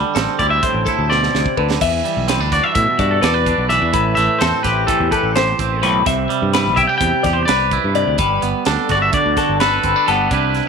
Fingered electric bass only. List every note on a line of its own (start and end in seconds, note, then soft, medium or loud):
0.16 0.25 A1 medium
0.40 0.59 D2 loud
0.74 0.84 A1 medium
0.98 1.27 D2 medium
1.35 1.44 D2 medium
1.58 1.77 D2 medium
1.82 2.01 E2 medium
2.17 2.40 B1 medium
2.40 2.60 D2 medium
2.75 2.85 A2 loud
2.99 3.18 G2 medium
3.23 3.52 E2 medium
3.58 3.77 B1 medium
3.82 3.92 E2 loud
3.94 4.13 A1 medium
4.18 4.27 A1 medium
4.41 4.51 E2 medium
4.65 4.84 A1 loud
5.00 5.10 E2 loud
5.23 5.52 A1 loud
5.60 5.83 A1 medium
5.83 6.02 B1 medium
6.07 6.26 C2 medium
6.42 6.68 G2 medium
6.67 6.85 B1 medium
7.01 7.11 E2 loud
7.25 7.44 E2 loud
7.49 7.77 C2 medium
7.84 8.03 G2 medium
8.07 8.17 D2 medium
8.19 8.38 G1 loud
8.43 8.52 G1 medium
8.67 8.76 D2 medium
8.90 9.09 G1 loud
9.26 9.35 D2 medium
9.49 9.78 G1 medium
9.84 9.93 G1 medium
10.08 10.27 G1 medium
10.31 10.60 C2 medium